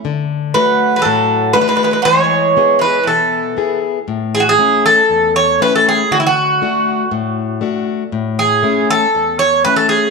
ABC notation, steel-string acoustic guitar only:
X:1
M:4/4
L:1/8
Q:1/4=119
K:A
V:1 name="Steel-string acoustic guitar"
D,2 [A,DF]2 A,,2 [A,DF]2 | E,2 [B,EG]2 B,,2 [B,EG]2 | A,,2 [A,CE]2 E,,2 [A,CE]2 | D,2 [A,DF]2 A,,2 [A,DF]2 |
A,,2 [A,CE]2 E,,2 [A,CE]2 |]